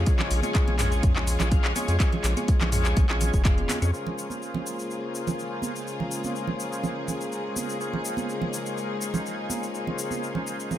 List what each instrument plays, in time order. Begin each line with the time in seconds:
Already playing: string section C#3 F3 G#3 F4 G#4
0.06 tonewheel organ G#3 C#4 F4 G#4 C#5, kick, closed hi-hat, shaker
0.19 clap, low conga
0.31 analog synth bass A#1, open hi-hat, shaker
0.43 tonewheel organ G#3 C#4 F4 G#4 C#5, closed hi-hat, high conga, shaker
0.55 kick, clap, closed hi-hat, shaker
0.68 analog synth bass A#1, closed hi-hat, high conga, low conga
0.79 tonewheel organ G#3 C#4 F4 G#4 C#5, clap, mid tom, open hi-hat, shaker
0.92 closed hi-hat, shaker
1.03 analog synth bass A#1, kick, closed hi-hat, mid tom, shaker
1.16 tonewheel organ G#3 C#4 F4 G#4 C#5, clap
1.27 open hi-hat, shaker
1.40 analog synth bass A#1, clap, closed hi-hat, low conga, shaker
1.51 tonewheel organ G#3 C#4 F4 G#4 F5, kick, closed hi-hat, shaker
1.64 clap, closed hi-hat
1.76 tonewheel organ G#3 C#4 F4 G#4 C#5, open hi-hat, high conga, shaker
1.88 analog synth bass F2, closed hi-hat, shaker
2.00 tonewheel organ C#4 F4 G#4 C#5, kick, clap, closed hi-hat, shaker
2.12 closed hi-hat, low conga
2.24 analog synth bass A#1, clap, open hi-hat, shaker
2.37 tonewheel organ G#3 C#4 F4 G#4 C#5, closed hi-hat, high conga, shaker
2.48 kick, closed hi-hat, shaker
2.61 analog synth bass A#1, clap, closed hi-hat, high conga, low conga
2.72 tonewheel organ G#3 C#4 F4 G#4 C#5, mid tom, open hi-hat, shaker
2.85 clap, closed hi-hat, shaker
2.97 analog synth bass A#1, kick, closed hi-hat, high conga, low conga, shaker
3.09 tonewheel organ G#3 C#4 F4 G#4 C#5, clap, closed hi-hat
3.21 open hi-hat, high conga, low conga, shaker
3.34 analog synth bass F1, kick, closed hi-hat, shaker
3.45 tonewheel organ G#3 C#4 F4 G#4 F5, kick, clap, closed hi-hat, mid tom, shaker
3.58 closed hi-hat, high conga
3.69 clap, open hi-hat, high conga, shaker
3.82 analog synth bass F2, tonewheel organ G#3 C#4 F4 G#4 C#5, closed hi-hat, shaker
3.93 string section C#3 G#3 A#3 F4 G#4, tonewheel organ A#3 C#4 F4 G#4 C5, shaker
4.07 low conga
4.18 shaker
4.30 high conga, shaker
4.42 shaker
4.54 high conga, low conga
4.67 shaker
4.79 shaker
4.91 shaker
5.15 shaker
5.27 low conga, shaker
5.39 shaker
5.62 high conga, shaker
5.76 shaker
5.87 shaker
6.00 low conga
6.11 shaker
6.24 high conga, shaker
6.36 shaker
6.47 low conga
6.60 shaker
6.73 shaker
6.83 high conga, low conga, shaker
7.08 low conga, shaker
7.21 shaker
7.32 shaker
7.56 high conga, shaker
7.70 shaker
7.81 tonewheel organ A#3 C#4 F4 G#4 C5, string section D#4, shaker
7.93 low conga
8.05 shaker
8.17 high conga, shaker
8.29 shaker
8.42 high conga, low conga
8.53 shaker
8.66 shaker
8.78 shaker
9.01 shaker
9.14 low conga, shaker
9.26 shaker
9.50 high conga, shaker
9.63 shaker
9.75 shaker
9.87 low conga
9.99 shaker
10.11 high conga, shaker
10.23 shaker
10.35 low conga
10.47 shaker
10.60 shaker
10.71 swell, high conga, low conga, shaker